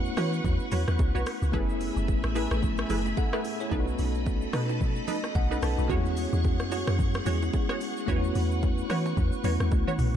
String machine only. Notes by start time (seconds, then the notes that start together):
Already playing: B4 F#5 C#6
1.53 A3 E5 G#5 B5
3.71 A4 D#5 B5
5.89 G#4 F#5 C#6
8.08 B4 C#6